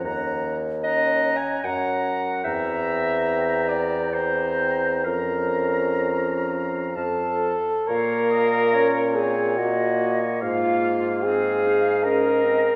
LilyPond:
<<
  \new Staff \with { instrumentName = "Flute" } { \time 3/4 \key bes \minor \tempo 4 = 72 bes''8 r8 bes''4 bes''4 | bes''2 bes''4 | bes''2 a''8 r8 | f''4 des''4 ees''4 |
f''4 f''4 ees''4 | }
  \new Staff \with { instrumentName = "Oboe" } { \time 3/4 \key bes \minor ges''8 r8 ges''4 ges''4 | g''2 g''4 | f''2 f''8 r8 | des''8 ees''8 des''2 |
f''8 f''2~ f''8 | }
  \new Staff \with { instrumentName = "French horn" } { \time 3/4 \key bes \minor des'8 r8 des'4 des'4 | c'2 c'4 | des'2 a'4 | bes'4. aes'8 ges'4 |
f'4 aes'4 bes'4 | }
  \new Staff \with { instrumentName = "Clarinet" } { \time 3/4 \key bes \minor r4 \tuplet 3/2 { ees''4 aes''8 } ges''4 | e''4. d''8 c''4 | bes'2 r4 | bes4 des'8 c'8 bes4~ |
bes4 c'8 ees'8 des'8 c'8 | }
  \new Staff \with { instrumentName = "Bassoon" } { \clef bass \time 3/4 \key bes \minor ees,4. r8 ges,4 | e,2. | f,2 f,8 r8 | bes,2. |
aes,2. | }
>>